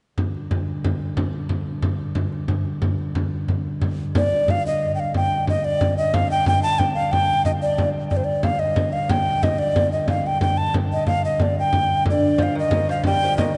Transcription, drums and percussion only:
0.18 frame drum
0.35 frame drum
0.51 frame drum
0.68 frame drum
0.84 frame drum
1.01 frame drum
1.17 frame drum
1.33 frame drum
1.49 frame drum
1.66 frame drum
1.82 frame drum
1.99 frame drum
2.15 frame drum
2.32 frame drum
2.48 frame drum
2.65 frame drum
2.82 frame drum
2.99 frame drum
3.15 frame drum
3.48 frame drum
3.82 frame drum
3.99 frame drum
4.15 frame drum
4.32 frame drum
4.48 frame drum
5.14 frame drum
5.31 frame drum
5.47 frame drum
5.81 frame drum
6.14 frame drum
6.30 frame drum
6.46 frame drum
6.79 frame drum
7.13 frame drum
7.29 frame drum
7.45 frame drum
7.61 frame drum
7.78 frame drum
8.11 frame drum
8.28 frame drum
8.43 frame drum
8.76 frame drum
9.09 frame drum
9.27 frame drum
9.43 frame drum
9.76 frame drum
10.08 frame drum
10.25 frame drum
10.41 frame drum
10.74 frame drum
11.07 frame drum
11.40 frame drum
11.56 frame drum
11.73 frame drum
11.89 frame drum
12.06 frame drum
12.23 frame drum
12.39 frame drum
12.71 frame drum
13.04 frame drum
13.22 frame drum
13.38 frame drum

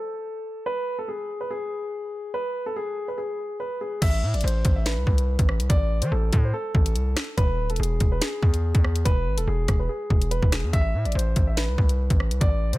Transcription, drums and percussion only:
4.02 kick, closed hi-hat, crash
4.34 closed hi-hat
4.41 closed hi-hat
4.48 closed hi-hat
4.65 kick, closed hi-hat
4.86 finger snap, snare, closed hi-hat
5.07 kick
5.18 closed hi-hat
5.39 kick, closed hi-hat
5.49 cross-stick
5.60 closed hi-hat
5.70 kick, closed hi-hat
6.02 closed hi-hat
6.33 kick, closed hi-hat
6.75 kick
6.86 closed hi-hat
6.96 closed hi-hat
7.17 finger snap, cross-stick, snare, closed hi-hat
7.38 kick, closed hi-hat
7.70 closed hi-hat
7.76 closed hi-hat
7.83 closed hi-hat
8.00 kick, closed hi-hat
8.22 finger snap, snare, closed hi-hat
8.43 kick
8.54 closed hi-hat
8.75 kick, closed hi-hat
8.84 cross-stick
8.96 closed hi-hat
9.06 kick, closed hi-hat
9.38 closed hi-hat
9.68 kick, cross-stick, closed hi-hat
10.10 kick
10.22 closed hi-hat
10.31 closed hi-hat
10.43 kick
10.52 finger snap, cross-stick, snare, closed hi-hat
10.73 kick, closed hi-hat
11.05 closed hi-hat
11.12 closed hi-hat
11.19 closed hi-hat
11.36 kick, closed hi-hat
11.57 finger snap, snare, closed hi-hat
11.78 kick
11.89 closed hi-hat
12.10 kick, closed hi-hat
12.20 cross-stick
12.31 closed hi-hat
12.41 kick, closed hi-hat
12.73 closed hi-hat

